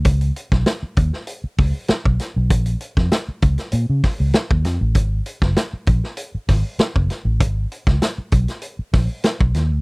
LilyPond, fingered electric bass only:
\new Staff \with { instrumentName = "Fingered electric bass" } { \clef bass \time 4/4 \key aes \mixolydian \tempo 4 = 98 des,8 r16 ces,16 r8 ees,16 r8. des,16 r8 ces,16 r16 ces,16 | bes,,8 r16 f,16 r8 des,16 r16 bes,16 des16 r16 des,16 r16 ees,16 f,16 a,,16 | aes,,8 r16 ges,,16 r8 bes,,16 r8. aes,,16 r8 ges,,16 r16 a,,16 | aes,,8 r16 des,16 r8 ces,16 r8. bes,,16 r8 ces,16 ees,16 d,16 | }